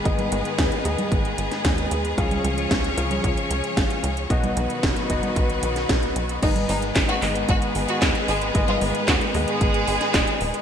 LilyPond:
<<
  \new Staff \with { instrumentName = "Violin section" } { \time 4/4 \key gis \dorian \tempo 4 = 113 r1 | r1 | r1 | dis'16 r16 dis'8 r16 fis'8 r16 fis'8 r16 fis'8 r16 <gis gis'>8 |
r16 eis'8 r16 fis'8 r16 <gis gis'>2 r16 | }
  \new Staff \with { instrumentName = "Grand piano" } { \time 4/4 \key gis \dorian <gis, b dis' gis' dis''>4. <gis, b dis' gis' dis''>2~ <gis, b dis' gis' dis''>8 | <cis cis' eis' gis' eis''>4. <cis cis' eis' gis' eis''>2~ <cis cis' eis' gis' eis''>8 | <b, b dis' fis' dis''>4. <b, b dis' fis' dis''>2~ <b, b dis' fis' dis''>8 | <gis, b dis' gis' dis''>4. <gis, b dis' gis' dis''>2~ <gis, b dis' gis' dis''>8 |
<gis, b dis' gis' dis''>4. <gis, b dis' gis' dis''>2~ <gis, b dis' gis' dis''>8 | }
  \new Staff \with { instrumentName = "String section" } { \time 4/4 \key gis \dorian << { <dis b b'>1 | <eis cis' cis''>1 | <dis b b'>1 | <dis b b'>1~ |
<dis b b'>1 | } \\ { <gis gis'>1~ | <gis gis'>1 | <fis fis'>1 | <gis gis'>1~ |
<gis gis'>1 | } >> }
  \new Staff \with { instrumentName = "Analog synth bass" } { \clef bass \time 4/4 \key gis \dorian gis,,8 gis,,8 dis,8 dis,8 gis,,8 gis,,8 dis,8 dis,8 | cis,8 cis,8 cis,8 cis,8 cis,8 cis,8 gis,,8 cis,8 | b,,8 b,,8 fis,,8 fis,,8 b,,8 b,,8 b,,8 b,,8 | gis,,8 gis,,8 gis,,8 gis,,8 gis,,8 gis,,8 dis,8 gis,,8 |
gis,,8 gis,,8 dis,8 dis,8 gis,,8 gis,,8 dis,,8 dis,,8 | }
  \new DrumStaff \with { instrumentName = "Drums" } \drummode { \time 4/4 <hh bd>16 <cgho hh>16 hh16 hh16 <hh bd sn>16 hh16 hh16 <cgho hh>16 <hh bd>16 hh16 hh16 <hh sn>16 <hh bd sn>16 hh16 hh16 hh16 | <hh bd>16 <cgho hh>16 hh16 hh16 <hh bd sn>16 hh16 hh16 <cgho hh>16 <hh bd>16 hh16 hh16 hh16 <hh bd sn>16 hh16 hh16 hh16 | <hh bd>16 <cgho hh>16 hh16 hh16 <hh bd sn>16 hh16 <hh bd>16 <cgho hh>16 <hh bd>16 hh16 hh16 <hh sn>16 <hh bd sn>16 hh16 hh16 hh16 | <cymc hh bd>16 <cgho hh>16 hho16 hh16 <hc hh bd sn>16 hh16 <hc hho>16 hh16 <hh bd>16 hh16 hho16 hh16 <hc hh bd sn>16 hh16 hho16 hh16 |
<hh bd>16 <cgho hh>16 hho16 hh16 <hc hh bd sn>16 hh16 hho16 hh16 <hh bd>16 hh16 hho16 <hh sn>16 <hc hh bd sn>16 hh16 hho16 hh16 | }
>>